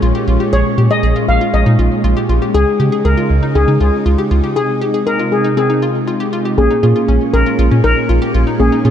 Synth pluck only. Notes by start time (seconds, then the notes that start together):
0.02 F4
0.15 G4
0.28 F4
0.40 G4
0.53 G#4
0.78 G4
0.91 G#4
1.03 G#4
1.16 F4
1.41 F4
1.54 C#4
1.66 D#4
1.79 F4
2.04 F4
2.17 G4
2.29 F4
2.42 G4
2.54 G#4
2.80 G4
2.92 G#4
3.05 G#4
3.17 F4
3.43 D#4
3.55 C#4
3.68 D#4
3.81 F4
4.06 F4
4.18 G4
4.31 F4
4.44 G4
4.56 G#4
4.81 G4
4.94 G#4
5.07 G#4
5.19 F4
5.44 D#4
5.57 C4
5.70 D#4
5.82 F4
6.08 F4
6.20 G4
6.33 F4
6.45 G4
6.71 D#4
6.83 F4
6.96 F4
7.08 C#4
7.34 G#4
7.46 F4
7.59 F4
7.71 C#4
7.84 D#4
8.09 F4
8.22 G4
8.35 F4
8.47 D#4
8.72 D#4
8.85 F4